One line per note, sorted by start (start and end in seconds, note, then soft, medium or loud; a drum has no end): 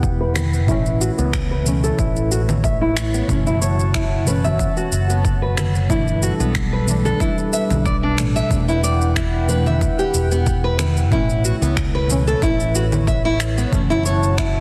0.00 0.68 E1 medium
0.00 0.66 B2 medium
0.00 0.68 E3 medium
0.00 0.69 A3 medium
0.00 0.19 B3 medium
0.00 0.70 D4 loud
0.00 3.25 E4 medium
0.00 3.25 B4 medium
0.00 0.66 F#5 medium
0.00 0.66 G5 medium
0.00 kick loud
0.00 shaker soft
0.20 0.34 B4 medium
0.36 finger snap medium
0.36 low conga medium
0.36 shaker medium
0.53 shaker soft
0.66 1.08 A1 medium
0.66 1.61 B2 medium
0.66 1.62 E3 medium
0.66 1.63 A3 medium
0.66 3.27 A3 medium
0.66 1.63 C#4 loud
0.66 0.99 E4 medium
0.66 5.86 C#5 medium
0.66 kick medium
0.66 shaker soft
0.86 shaker soft
1.01 1.11 F#4 medium
1.01 shaker medium
1.18 1.90 C#2 medium
1.18 1.49 B3 medium
1.18 shaker soft
1.33 finger snap medium
1.33 kick loud
1.33 shaker soft
1.51 1.65 B4 medium
1.64 3.24 B2 medium
1.64 3.25 E3 medium
1.64 3.26 A3 medium
1.64 shaker medium
1.68 3.26 C#4 loud
1.84 1.98 A4 medium
1.84 shaker soft
1.99 3.20 A1 medium
1.99 2.30 E4 medium
1.99 kick loud
1.99 shaker soft
2.16 shaker soft
2.31 2.41 F#4 medium
2.31 shaker medium
2.49 low conga medium
2.49 shaker soft
2.64 2.80 E5 medium
2.64 kick loud
2.64 shaker soft
2.81 2.96 E4 medium
2.97 finger snap medium
2.97 shaker medium
3.14 3.29 B3 medium
3.14 shaker soft
3.27 4.67 F#1 medium
3.27 4.22 B2 medium
3.27 4.23 E3 medium
3.27 4.24 A3 medium
3.27 4.24 C#4 medium
3.27 5.87 F#4 medium
3.27 5.87 F#5 medium
3.27 5.87 A5 medium
3.27 kick loud
3.27 shaker soft
3.47 3.60 E4 medium
3.47 shaker soft
3.62 3.93 C#5 medium
3.62 shaker medium
3.79 shaker soft
3.94 4.26 E4 medium
3.94 finger snap medium
3.94 kick loud
3.94 shaker soft
4.25 5.85 B2 medium
4.25 5.86 E3 medium
4.25 5.87 A3 medium
4.25 4.44 B4 medium
4.25 shaker medium
4.29 5.87 C#4 medium
4.44 4.75 E5 medium
4.44 low conga medium
4.44 shaker soft
4.59 kick loud
4.59 shaker soft
4.77 5.08 F#4 loud
4.77 shaker soft
4.92 5.90 F#1 medium
4.92 shaker medium
5.10 5.41 B3 medium
5.10 shaker soft
5.25 kick loud
5.25 shaker soft
5.42 5.56 B4 medium
5.57 5.74 B4 medium
5.57 finger snap medium
5.57 low conga medium
5.57 shaker medium
5.75 shaker soft
5.88 6.30 G1 medium
5.88 6.83 B2 medium
5.88 6.84 E3 medium
5.88 8.48 G3 medium
5.88 6.85 A3 medium
5.88 8.48 D4 medium
5.88 6.21 E4 medium
5.88 8.48 A4 medium
5.88 8.48 B4 medium
5.88 kick medium
5.88 shaker soft
5.92 6.85 D4 loud
6.08 shaker soft
6.23 6.33 F#4 medium
6.23 shaker medium
6.40 7.12 B1 medium
6.40 6.71 B3 medium
6.40 shaker soft
6.55 finger snap medium
6.55 kick loud
6.55 shaker soft
6.73 6.87 B4 medium
6.86 8.14 B2 medium
6.86 8.15 E3 medium
6.86 8.16 A3 medium
6.86 shaker medium
6.90 8.16 D4 medium
7.05 7.20 A4 medium
7.05 low conga medium
7.05 shaker soft
7.20 7.36 E4 medium
7.20 kick loud
7.20 shaker soft
7.38 shaker soft
7.53 7.63 E5 medium
7.53 shaker medium
7.70 8.18 B1 medium
7.70 low conga medium
7.70 shaker soft
7.86 7.96 D5 medium
7.86 kick loud
7.86 shaker soft
8.03 8.17 D4 medium
8.17 8.40 A1 medium
8.17 8.47 B2 medium
8.17 8.47 E3 medium
8.17 8.47 A3 medium
8.17 8.48 D4 loud
8.17 finger snap medium
8.17 shaker medium
8.36 8.49 E5 medium
8.36 shaker soft
8.49 9.88 E1 loud
8.49 9.44 B2 medium
8.49 9.45 E3 medium
8.49 9.45 A3 medium
8.49 9.46 D4 medium
8.49 13.69 E4 medium
8.49 11.09 B4 medium
8.49 11.09 F#5 medium
8.49 11.09 G5 medium
8.49 kick loud
8.49 shaker soft
8.68 8.82 E4 medium
8.68 shaker soft
8.83 9.15 D5 medium
8.83 shaker medium
9.01 shaker soft
9.16 9.47 E4 medium
9.16 finger snap medium
9.16 kick loud
9.16 shaker soft
9.47 11.07 B2 medium
9.47 11.08 E3 medium
9.47 11.08 A3 medium
9.47 11.09 D4 medium
9.47 9.65 B4 medium
9.47 shaker medium
9.66 9.97 E5 medium
9.66 low conga medium
9.66 shaker soft
9.81 kick loud
9.81 shaker soft
9.99 10.30 G4 loud
9.99 shaker soft
10.14 11.12 E1 loud
10.14 shaker medium
10.31 10.62 B3 medium
10.31 shaker soft
10.46 kick loud
10.46 shaker soft
10.64 10.78 B4 medium
10.79 10.96 B4 medium
10.79 finger snap medium
10.79 low conga medium
10.79 shaker medium
10.97 shaker soft
11.10 11.52 A1 medium
11.10 12.05 B2 medium
11.10 12.06 E3 medium
11.10 13.70 A3 medium
11.10 12.06 A3 medium
11.10 12.07 C#4 medium
11.10 11.43 E4 medium
11.10 13.70 B4 medium
11.10 14.60 C#5 medium
11.10 kick medium
11.10 shaker soft
11.30 shaker soft
11.45 11.54 F#4 medium
11.45 shaker medium
11.62 12.33 C#2 loud
11.62 11.93 B3 medium
11.62 shaker soft
11.77 finger snap medium
11.77 kick loud
11.77 shaker soft
11.95 12.09 B4 medium
12.08 13.68 B2 medium
12.08 13.69 E3 medium
12.08 13.69 A3 medium
12.08 shaker medium
12.12 13.70 C#4 loud
12.27 12.42 A4 medium
12.27 shaker soft
12.42 13.64 A1 medium
12.42 12.74 E4 medium
12.42 kick loud
12.42 shaker soft
12.60 shaker soft
12.75 12.85 F#4 medium
12.75 shaker medium
12.92 low conga medium
12.92 shaker soft
13.07 13.23 E5 medium
13.07 kick loud
13.07 shaker soft
13.25 13.39 E4 loud
13.40 finger snap medium
13.40 shaker medium
13.58 13.73 B3 medium
13.58 shaker soft
13.71 14.60 F#1 medium
13.71 14.60 B2 medium
13.71 14.60 E3 medium
13.71 14.60 A3 medium
13.71 14.60 C#4 loud
13.71 14.60 F#4 medium
13.71 14.60 F#5 medium
13.71 14.60 A5 medium
13.71 kick medium
13.71 shaker soft
13.90 14.04 E4 loud
13.90 shaker soft
14.06 14.37 C#5 medium
14.06 shaker medium
14.23 shaker soft
14.38 14.60 E4 medium
14.38 finger snap medium
14.38 kick medium
14.38 shaker soft